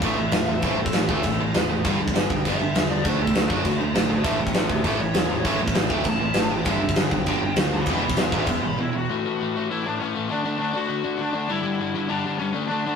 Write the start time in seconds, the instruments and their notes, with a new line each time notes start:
0.02 picked electric bass A1, overdriven electric guitar A2 E3 A3, lead electric guitar E5, kick, crash
0.17 picked electric bass A1, overdriven electric guitar A2 E3
0.32 picked electric bass E1, overdriven electric guitar A2 E3, snare, crash
0.49 overdriven electric guitar A2 E3
0.62 picked electric bass A1, overdriven electric guitar A2 E3, kick, crash
0.67 overdriven electric guitar A3, lead electric guitar C5
0.79 picked electric bass A1, overdriven electric guitar A2 E3, lead electric guitar A4
0.86 kick
0.93 picked electric bass A1, overdriven electric guitar A2 E3, snare, crash
0.97 lead electric guitar G4
1.09 picked electric bass D2, overdriven electric guitar A2 E3 A3, lead electric guitar A4, kick
1.23 picked electric bass A1, overdriven electric guitar A2 E3, kick, crash
1.39 picked electric bass A1, overdriven electric guitar A2 E3
1.54 picked electric bass E1, overdriven electric guitar A2 E3, snare, crash
1.69 overdriven electric guitar A2 E3
1.84 picked electric bass G1, overdriven electric guitar G2 D3 G3, kick, crash
1.98 picked electric bass G1, overdriven electric guitar G2 D3
2.08 kick
2.14 picked electric bass G1, overdriven electric guitar G2 D3, snare, crash
2.30 picked electric bass B1, overdriven electric guitar G2 D3, lead electric guitar G5, kick
2.45 picked electric bass G1, overdriven electric guitar G2 D3 G3, kick, crash
2.50 lead electric guitar E5
2.61 picked electric bass G1, overdriven electric guitar G2 D3
2.75 picked electric bass E2, overdriven electric guitar G2 D3, snare, crash
2.89 overdriven electric guitar G2 D3, lead electric guitar D5
3.05 picked electric bass D2, overdriven electric guitar D3 A3 D4, lead electric guitar C5, kick, crash
3.19 picked electric bass D2, overdriven electric guitar D3 A3, lead electric guitar A4
3.27 kick
3.34 picked electric bass D2, overdriven electric guitar D3 A3, lead electric guitar A4, snare, crash
3.49 picked electric bass F#2, overdriven electric guitar D3 A3 D4, lead electric guitar F#4, kick
3.64 picked electric bass D2, overdriven electric guitar D3 A3, kick, crash
3.79 picked electric bass D2, overdriven electric guitar D3 A3
3.95 picked electric bass A1, overdriven electric guitar D3 A3, snare, crash
4.09 overdriven electric guitar D3 A3, lead electric guitar C5 A5
4.22 picked electric bass A1, overdriven electric guitar A2 E3, lead electric guitar C#5 A5, kick, crash
4.26 overdriven electric guitar A3
4.40 picked electric bass A1, overdriven electric guitar A2 E3, lead electric guitar E5 G5
4.47 kick
4.54 picked electric bass A1, overdriven electric guitar A2 E3, lead electric guitar E5 G5, snare, crash
4.69 picked electric bass D2, overdriven electric guitar A2 E3, lead electric guitar G4 E5, kick
4.84 picked electric bass A1, overdriven electric guitar A2 E3 A3, lead electric guitar G4 E5, kick, crash
4.99 picked electric bass A1, overdriven electric guitar A2 E3, lead electric guitar C#5
5.14 picked electric bass E1, overdriven electric guitar A2 E3, snare, crash
5.30 overdriven electric guitar A2 E3
5.43 picked electric bass A1, overdriven electric guitar A2 E3 A3, kick, crash
5.59 picked electric bass A1, overdriven electric guitar A2 E3
5.68 kick
5.74 picked electric bass A1, overdriven electric guitar A2 E3, snare, crash
5.89 picked electric bass D2, overdriven electric guitar A2 E3 A3, lead electric guitar G5, kick
6.04 picked electric bass A1, overdriven electric guitar A2 E3, kick, crash
6.08 lead electric guitar A5
6.19 picked electric bass A1, overdriven electric guitar A2 E3
6.34 picked electric bass G#1, overdriven electric guitar A2 E3, snare, crash
6.51 overdriven electric guitar A2 E3, lead electric guitar G5
6.65 picked electric bass G1, overdriven electric guitar G2 D3 G3, lead electric guitar E5, kick, crash
6.81 picked electric bass G1, overdriven electric guitar G2 D3
6.89 kick
6.96 picked electric bass G1, overdriven electric guitar G2 D3, snare, crash
7.00 lead electric guitar G5
7.11 picked electric bass B1, overdriven electric guitar G2 D3, kick
7.26 picked electric bass G1, overdriven electric guitar G2 D3 G3, kick, crash
7.42 picked electric bass G1, overdriven electric guitar G2 D3
7.56 picked electric bass D2, overdriven electric guitar G2 D3, snare, crash
7.74 overdriven electric guitar G2 D3, lead electric guitar B5 D6
7.86 picked electric bass E1, overdriven electric guitar E2, kick, crash
7.90 overdriven electric guitar B2 E3, lead electric guitar B5 D6
8.02 picked electric bass E1, overdriven electric guitar E2 B2, lead electric guitar B5 D6
8.10 kick
8.16 picked electric bass E1, overdriven electric guitar E2 B2, snare, crash
8.21 lead electric guitar E5 C6
8.32 picked electric bass A1, overdriven electric guitar E2 B2, lead electric guitar E5, kick
8.36 overdriven electric guitar E3, lead electric guitar C6
8.46 picked electric bass E1, overdriven electric guitar E2 B2, lead electric guitar E5 C6, kick, crash
8.63 picked electric bass G#1, overdriven electric guitar E2 B2
8.68 lead electric guitar B5
8.80 overdriven electric guitar E2 B2, lead electric guitar E4
8.95 overdriven electric guitar E2 B2, lead electric guitar F#4
9.09 overdriven electric guitar A2 E3 A3
9.25 overdriven electric guitar A2 E3 A3
9.40 overdriven electric guitar A2 E3 A3
9.56 overdriven electric guitar A2 E3 A3
9.71 overdriven electric guitar A2 E3 A3, lead electric guitar E4
9.86 overdriven electric guitar A2 E3 A3, lead electric guitar D4
10.00 overdriven electric guitar A2 E3 A3, lead electric guitar C#4
10.15 overdriven electric guitar A2 E3 A3
10.29 overdriven electric guitar D3 A3 D4, lead electric guitar D4
10.44 overdriven electric guitar D3 A3 D4
10.58 overdriven electric guitar D3 A3 D4, lead electric guitar D4
10.73 overdriven electric guitar D3 A3 D4, lead electric guitar F#4
10.89 overdriven electric guitar D3 A3 D4
11.04 overdriven electric guitar D3 A3 D4
11.16 overdriven electric guitar D3 A3 D4
11.21 lead electric guitar D4
11.33 overdriven electric guitar D3 A3 D4
11.48 overdriven electric guitar G2 D3 G3, lead electric guitar E4
11.63 overdriven electric guitar G2 D3 G3
11.79 overdriven electric guitar G2 D3 G3
11.94 overdriven electric guitar G2 D3 G3
12.08 overdriven electric guitar G2 D3 G3, lead electric guitar D4
12.25 overdriven electric guitar G2 D3 G3
12.38 overdriven electric guitar G2 D3 G3, lead electric guitar C#4
12.53 overdriven electric guitar D3 A3 D4
12.67 overdriven electric guitar D3 A3 D4, lead electric guitar D4
12.84 overdriven electric guitar D3 A3 D4